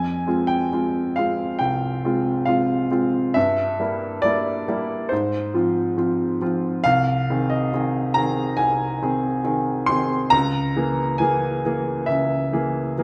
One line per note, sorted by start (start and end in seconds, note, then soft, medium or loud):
0.00 0.26 F2 soft
0.00 0.49 G#5 medium
0.27 0.69 G#3 soft
0.27 0.69 C4 soft
0.27 0.69 F4 soft
0.47 1.16 G5 medium
0.72 1.13 G#3 soft
0.72 1.14 C4 soft
0.72 1.14 F4 soft
1.16 1.57 G#3 soft
1.16 1.58 C4 soft
1.16 1.58 F4 soft
1.16 1.60 F5 medium
1.59 2.03 C2 soft
1.59 2.46 G5 medium
2.05 2.43 G#3 soft
2.05 2.43 C4 soft
2.05 2.44 F4 soft
2.46 2.87 G#3 soft
2.46 2.88 C4 soft
2.46 2.88 F4 soft
2.46 3.35 F5 medium
2.91 3.32 G#3 soft
2.91 3.32 C4 soft
2.91 3.32 F4 soft
3.34 3.79 G2 medium
3.34 4.23 E5 medium
3.80 4.20 G3 soft
3.80 4.20 A#3 soft
3.80 4.20 E4 soft
4.22 4.64 G3 soft
4.22 4.64 A#3 soft
4.22 4.64 E4 soft
4.22 5.10 D5 medium
4.68 5.08 G3 soft
4.68 5.08 A#3 soft
4.68 5.08 E4 soft
5.09 5.54 G#2 medium
5.09 6.41 C5 medium
5.54 5.94 F3 soft
5.54 5.94 C4 soft
5.54 5.94 F4 soft
5.97 6.37 F3 soft
5.97 6.38 C4 soft
5.97 6.38 F4 soft
6.41 6.81 F3 soft
6.41 6.82 C4 soft
6.41 6.82 F4 soft
6.84 7.28 C2 medium
6.84 7.50 F5 medium
7.30 7.69 D#3 soft
7.30 7.69 C4 soft
7.30 7.69 G#4 soft
7.50 8.15 D#5 medium
7.73 8.12 D#3 soft
7.73 8.12 C4 soft
7.73 8.13 G#4 soft
8.14 8.55 D#3 soft
8.14 8.55 C4 soft
8.14 8.55 G#4 soft
8.14 8.58 A#5 medium
8.57 9.00 C2 medium
8.57 9.87 G#5 medium
9.02 9.41 D#3 soft
9.02 9.41 C4 soft
9.02 9.42 G#4 soft
9.44 9.84 D#3 soft
9.44 9.84 C4 soft
9.44 9.84 G#4 soft
9.86 10.28 D#3 soft
9.86 10.29 C4 soft
9.86 10.29 G#4 medium
9.86 10.31 C6 medium
10.30 10.75 C#2 medium
10.30 11.20 A#5 loud
10.76 11.17 E3 soft
10.76 11.17 A#3 soft
10.76 11.17 G#4 soft
11.18 11.61 E3 soft
11.18 11.62 A#3 soft
11.18 11.62 G#4 soft
11.18 12.08 G#5 medium
11.65 12.06 E3 soft
11.65 12.06 A#3 soft
11.65 12.06 G#4 soft
12.06 12.52 C#2 soft
12.06 13.03 E5 medium
12.53 12.94 E3 soft
12.53 12.94 A#3 soft
12.53 12.94 G#4 soft
12.98 13.03 E3 soft
12.98 13.03 A#3 soft
12.98 13.03 G#4 soft